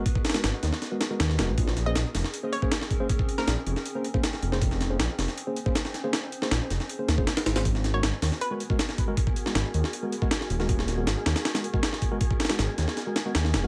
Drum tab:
HH |o---ooo-o---o---o---o---o---o---|o---o---o---o---o---o---o---o---|o---o---o---o---o---o---o---o---|o---o---o---o---o---o---o---o---|
SD |----ooo-o---o-o-o---o---o-o-o---|--o-o---o---o-o---------o-o-----|------o-o-----o---------o-o---o-|--o-o---o---o-o---------o-o-o---|
BD |o-o-----------------------------|o---------------------o-----o---|o-o-------------------o---------|o---------------------o---------|

HH |o---o---o---o---o---o---o-o-o-o-|o---o---o---o---o---o---o---o---|o---o---o---o---o---o---o---o---|o---o---o---o-o-o-o-o---o---o---|
SD |o-----o-o---o-o-----o---o-o-o-o-|--o-o---o---o-o---------o-o-----|------o-o-----o---------o-o---o-|--o-o---o---o-o-o-o-----o-o-----|
BD |----------------------o---------|o---------------------o-----o---|o-o-------------------o---------|o---------------------o-----o---|

HH |o---ooo-o---o---o---o---o---o---|
SD |----ooo-o---o-o-o---o---o-o-o---|
BD |o-o-----------------------------|